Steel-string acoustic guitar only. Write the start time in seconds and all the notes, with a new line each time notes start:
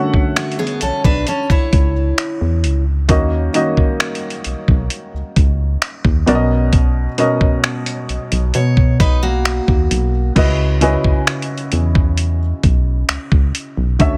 0.36 A3 F#4
0.59 B3 G#4
0.82 C#4 A4
1.05 D4 B4
1.28 C#4 A4
1.50 E4 C#5
8.55 C#5
9.00 D#4 B4
9.23 A#3 F#4